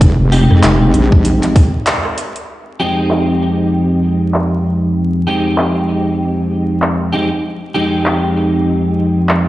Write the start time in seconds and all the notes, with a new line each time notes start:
Already playing: F1 G#3 C4 D#4 G4
0.01 kick, closed hi-hat
0.19 F1
0.32 G#3 C4 D#4 G4, open hi-hat
0.51 F2, cross-stick
0.63 F1, clap, closed hi-hat
0.94 A#1, closed hi-hat
1.12 kick
1.25 closed hi-hat
1.43 clap, closed hi-hat
1.56 kick, open hi-hat
1.87 clap, closed hi-hat
2.05 cross-stick
2.18 closed hi-hat
2.36 closed hi-hat
2.80 F2 G#3 C4 D#4 G4
3.10 clap
4.34 clap
5.27 F2 G#3 C4 D#4 G4
5.58 clap
6.82 clap
7.12 F2 G#3 C4 D#4 G4
7.74 F2 G#3 C4 D#4 G4
8.06 clap
9.29 clap